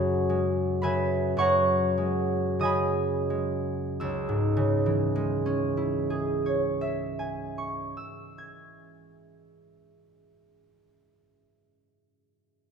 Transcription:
0.00 1.36 F#2 soft
0.00 0.82 C#3 soft
0.00 2.71 F#3 soft
0.00 1.37 C#5 soft
0.00 0.82 E5 medium
0.00 1.38 F#5 medium
0.00 0.82 G#5 soft
0.00 1.38 A#5 medium
0.00 1.37 C#6 medium
0.00 1.30 E6 medium
0.00 0.40 F#6 medium
0.29 1.96 G#3 soft
0.82 2.59 C#3 soft
0.82 4.05 B4 soft
0.82 4.73 E5 soft
0.82 2.61 G#5 soft
0.82 1.79 B5 medium
1.37 4.05 F#2 soft
1.37 5.28 C#5 soft
1.37 4.05 F#5 soft
1.37 5.28 C#6 medium
1.41 4.05 A#5 soft
1.98 3.29 G#3 soft
2.59 4.06 C#3 soft
2.59 4.06 D#5 soft
2.59 6.53 G#5 soft
2.59 4.05 D#6 medium
2.65 4.06 B5 soft
3.30 5.14 G#3 soft
4.00 7.91 C#2 soft
4.00 7.78 E6 soft
4.29 8.19 G#2 soft
4.57 8.47 C#3 soft
4.86 8.76 E3 soft
5.16 8.94 G#3 soft
5.46 9.24 C#4 soft
5.77 9.56 E4 soft
6.10 9.89 G#4 soft
6.46 10.24 C#5 soft
6.81 10.60 E5 soft
7.19 10.78 G#5 soft
7.58 10.78 C#6 soft
7.97 10.78 E6 soft
8.38 10.79 G#6 soft

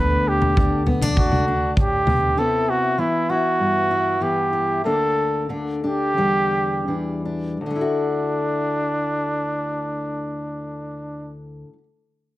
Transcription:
0.00 1.17 D2 medium
0.00 2.33 D2 medium
0.00 0.56 D3 soft
0.00 0.85 B3 soft
0.00 0.56 D4 medium
0.00 0.30 B4 medium
0.28 0.88 G4 medium
0.42 floor tom medium
0.57 2.37 D3 medium
0.57 0.86 D4 medium
0.57 kick medium
0.86 1.02 B3 medium
0.86 floor tom medium
1.02 1.47 D4 soft
1.02 floor tom medium
1.17 2.38 D2 medium
1.17 1.73 F#4 medium
1.17 kick medium
1.17 floor tom medium
1.32 mid tom medium
1.48 2.34 D4 medium
1.77 2.06 A2 soft
1.77 2.40 G4 medium
1.77 kick medium
2.07 2.37 B2 soft
2.07 floor tom medium
2.07 mid tom medium
2.37 2.98 C3 medium
2.37 2.97 B3 soft
2.37 3.28 E4 medium
2.37 2.71 A4 medium
2.70 3.01 F#4 medium
2.98 4.19 E3 soft
2.98 4.20 B3 soft
2.98 3.32 E4 medium
3.29 3.90 E4 medium
3.29 4.24 F#4 medium
3.59 4.80 G2 medium
3.91 4.52 E4 soft
4.20 4.80 E3 soft
4.20 4.81 B3 soft
4.20 4.85 G4 medium
4.53 4.81 E4 soft
4.85 6.17 D2 medium
4.85 6.14 A#3 soft
4.85 5.49 D4 soft
4.85 5.49 A4 medium
5.49 6.87 D3 soft
5.49 5.82 D4 soft
5.83 6.13 D4 soft
5.83 7.19 G4 medium
6.17 7.56 E2 medium
6.17 7.61 G3 soft
6.17 6.87 D4 soft
6.88 7.56 E3 soft
6.88 7.24 D4 soft
7.25 7.57 D4 soft
7.60 11.63 D2 soft
7.60 11.37 D4 medium
7.66 11.68 D3 soft
7.71 11.73 A3 soft
7.75 11.78 E4 soft
7.81 11.83 F#4 soft

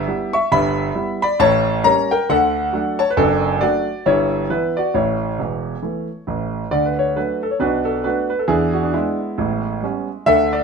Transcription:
0.00 0.30 G4 medium
0.00 0.33 E5 loud
0.07 0.32 G3 soft
0.07 0.32 B3 soft
0.07 0.32 E4 medium
0.33 0.50 E5 medium
0.33 0.51 C#6 loud
0.52 0.89 G1 medium
0.52 0.89 G2 medium
0.52 1.19 E5 medium
0.52 1.21 B5 loud
0.95 1.19 G3 medium
0.95 1.20 B3 soft
0.95 1.20 E4 medium
1.22 1.39 D5 medium
1.22 1.40 B5 loud
1.40 1.77 A1 medium
1.40 1.77 A2 loud
1.40 1.82 C#5 medium
1.40 1.84 A5 loud
1.84 2.09 G3 soft
1.84 2.09 A#3 soft
1.84 2.09 C#4 soft
1.84 2.09 C#5 medium
1.84 2.10 A#5 loud
2.11 2.28 A#4 medium
2.11 2.29 G5 loud
2.29 2.67 D2 medium
2.29 2.67 D3 medium
2.29 2.96 A4 medium
2.29 3.00 F#5 loud
2.73 2.97 F#3 medium
2.73 2.97 A3 medium
2.73 2.98 D4 medium
2.99 3.11 C#5 medium
2.99 3.11 A5 medium
3.10 3.16 B4 medium
3.17 3.55 F#1 medium
3.17 3.54 F#2 medium
3.17 3.59 D4 medium
3.17 3.61 A4 loud
3.61 3.86 F#3 soft
3.61 3.86 A3 soft
3.61 3.86 D4 medium
3.61 4.03 F#4 medium
3.61 4.05 D5 medium
4.06 4.43 G1 medium
4.06 4.43 G2 medium
4.06 4.47 E4 medium
4.06 4.50 C#5 medium
4.50 4.74 E3 soft
4.50 4.75 B3 soft
4.50 4.75 E4 medium
4.50 4.76 B4 medium
4.77 4.94 F#4 medium
4.77 4.94 D5 medium
4.94 5.30 A1 medium
4.94 5.30 A2 medium
4.94 5.81 E4 medium
4.94 6.27 C#5 medium
5.39 5.74 E1 medium
5.39 5.74 E2 medium
5.82 6.07 E3 soft
5.82 6.07 A3 soft
5.82 6.07 E4 soft
6.27 6.63 A1 medium
6.27 6.63 A2 medium
6.71 7.09 D2 medium
6.71 7.09 D3 medium
6.71 6.85 D5 medium
6.85 6.98 B4 medium
6.99 7.16 C#5 medium
7.16 7.41 F#3 soft
7.16 7.41 A3 soft
7.16 7.41 D4 soft
7.16 7.43 B4 medium
7.43 7.52 A4 medium
7.51 7.60 C#5 medium
7.60 7.98 B1 medium
7.60 7.98 B2 medium
7.60 7.85 D4 medium
7.60 7.85 F#4 medium
7.60 7.87 B4 medium
7.85 8.04 A4 medium
8.04 8.29 A3 soft
8.04 8.29 B3 soft
8.04 8.30 D4 medium
8.04 8.30 F#4 medium
8.04 8.28 B4 medium
8.30 8.39 B4 medium
8.39 8.49 A4 medium
8.48 8.86 E2 medium
8.48 8.86 E3 medium
8.48 8.74 D4 medium
8.48 8.74 E4 medium
8.48 8.75 G#4 medium
8.73 8.83 F#4 medium
8.83 8.92 D4 medium
8.94 10.23 G#3 medium
8.94 9.82 B3 medium
8.94 9.18 D4 soft
8.94 10.27 E4 medium
9.38 9.76 A1 medium
9.38 9.76 A2 medium
9.82 10.07 G3 soft
9.82 10.07 B3 soft
9.82 10.08 C#4 soft
10.26 10.64 D2 medium
10.26 10.64 D3 medium
10.26 10.52 A4 medium
10.26 10.53 E5 loud
10.53 10.64 D5 medium

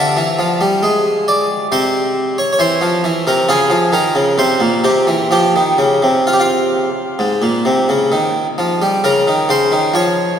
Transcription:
0.00 0.15 D3 medium
0.00 1.67 D4 soft
0.00 1.07 E5 medium
0.17 0.38 E3 medium
0.39 0.60 F3 medium
0.61 0.82 G3 medium
0.83 1.47 G#3 medium
1.28 1.65 D5 medium
1.72 2.35 C3 medium
1.72 2.38 C5 medium
2.38 2.51 C#5 medium
2.53 2.60 C#5 medium
2.59 2.80 E3 medium
2.59 3.26 C5 medium
2.81 3.03 F3 soft
3.04 3.25 E3 soft
3.27 3.48 C3 soft
3.27 3.49 A#4 medium
3.49 3.70 C#3 medium
3.49 4.34 F4 soft
3.49 3.94 G#4 medium
3.70 3.91 F3 medium
3.92 4.14 D#3 soft
3.92 4.38 A#4 medium
4.15 4.37 C#3 soft
4.38 4.60 C3 medium
4.38 4.85 C5 medium
4.60 4.83 A#2 medium
4.84 5.06 C3 soft
4.84 5.31 G4 medium
5.07 5.30 E3 soft
5.31 5.53 F3 medium
5.31 6.25 G4 medium
5.56 5.78 D#3 soft
5.78 6.00 C#3 medium
6.02 6.86 C3 soft
6.27 6.33 F4 soft
6.33 6.40 G4 soft
6.40 8.11 F4 soft
7.19 7.41 G#2 medium
7.42 7.64 A#2 soft
7.65 7.87 C3 soft
7.89 8.11 C#3 soft
8.12 8.45 D#3 soft
8.58 8.80 F3 soft
8.82 9.03 G3 soft
9.04 9.26 C#3 medium
9.04 9.50 A#4 medium
9.28 9.49 D#3 soft
9.49 9.71 C#3 medium
9.49 9.95 C5 medium
9.72 9.93 D#3 soft
9.94 10.39 F3 soft
9.94 10.39 C#5 medium

